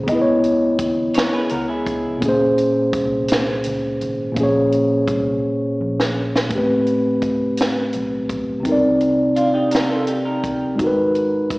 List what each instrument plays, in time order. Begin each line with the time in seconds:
0.04 tine electric piano C#3 B3
0.08 fingered electric bass C#2, tine electric piano D#5, kick, closed hi-hat
0.12 tine electric piano E4 B4
0.22 tine electric piano C#5
0.44 closed hi-hat
0.79 fingered electric bass D#2, kick, closed hi-hat
1.14 clean electric guitar A#4 C#5, muted fingered electric bass stroke, snare, closed hi-hat
1.33 clean electric guitar G#4 B4
1.49 fingered electric bass C#2, clean electric guitar F#4 A#4, closed hi-hat
1.68 clean electric guitar E4 G#4
1.86 kick, closed hi-hat
2.17 tine electric piano A#2 A#3
2.22 fingered electric bass A#1, tine electric piano C#4 G#4, kick, closed hi-hat
2.29 tine electric piano C5
2.58 closed hi-hat
2.93 fingered electric bass C2, kick, closed hi-hat
3.28 snare, closed hi-hat
3.64 fingered electric bass C#2, closed hi-hat
4.01 fingered electric bass G#1, closed hi-hat
4.32 tine electric piano A#2 A#3
4.36 fingered electric bass A#1, tine electric piano C#4, kick, closed hi-hat
4.41 tine electric piano G#4 C#5
4.72 closed hi-hat
5.08 fingered electric bass C2, kick, closed hi-hat
5.46 muted fingered electric bass stroke
5.81 fingered electric bass A#1
6.00 snare
6.36 snare
6.47 tine electric piano A2 A3, closed hi-hat
6.51 fingered electric bass A1, tine electric piano B3, kick
6.55 tine electric piano C4 G4 B4
6.86 closed hi-hat
7.22 muted fingered electric bass stroke, kick, closed hi-hat
7.57 snare, closed hi-hat
7.93 fingered electric bass B1, closed hi-hat
8.29 fingered electric bass B1, kick, closed hi-hat
8.60 tine electric piano C3 C4
8.65 fingered electric bass C2, tine electric piano D#4, kick, closed hi-hat
8.69 tine electric piano A#4 D5
9.01 closed hi-hat
9.36 clean electric guitar D4 F4, muted fingered electric bass stroke, closed hi-hat
9.54 clean electric guitar D#4 G4
9.71 clean electric guitar G4 A#4, snare, closed hi-hat
9.89 clean electric guitar F4 A4
10.07 clean electric guitar D#4 G4, closed hi-hat
10.25 clean electric guitar G4 A#4
10.44 kick, closed hi-hat
10.76 tine electric piano G#3 D#4, kick, closed hi-hat
10.80 fingered electric bass G#1, tine electric piano F#4
10.84 tine electric piano A#4 B4
11.15 closed hi-hat
11.50 muted fingered electric bass stroke, kick, closed hi-hat